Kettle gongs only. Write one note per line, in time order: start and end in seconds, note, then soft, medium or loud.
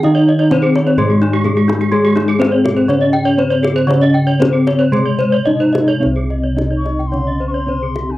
0.00 0.47 D#3 medium
0.00 1.41 D#4 medium
0.51 0.59 C#4 soft
0.97 2.35 G#2 medium
1.44 1.52 C#4 soft
1.93 3.34 G#4 medium
2.40 2.48 C#4 soft
2.89 4.36 C#3 medium
3.38 3.46 C#4 soft
3.89 4.40 C#4 medium
4.41 4.49 C#4 soft
4.92 6.53 C3 medium
5.47 5.55 C#4 soft
6.00 7.63 C4 medium
6.05 8.18 C2 medium
6.56 6.64 C#4 soft
7.67 7.75 C#4 soft